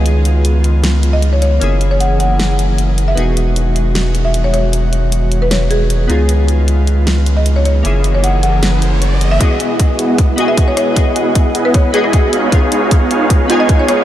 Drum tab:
HH |x-x-x-x-x-x-x-x-|x-x-x-x-x-x-x-x-|x-x-x-x-x-x-x-x-|x-x-x-x-x-x-x-x-|
SD |--------o-------|--------o-------|--------o-------|--------o-------|
BD |----------------|----------------|----------------|----------------|

HH |x-x-x-x-x-x-x-x-|x-x-x-x-x-x-x-x-|x-x-x-x-x-x-x-x-|x-x-x-x-x-x-x-x-|
SD |--------o-------|--------o-------|--------------r-|-----------r----|
BD |----------------|----------------|o---o---o---o---|o---o---o---o---|

HH |x-x-x-x-x-x-x-x-|
SD |--------------r-|
BD |o---o---o---o---|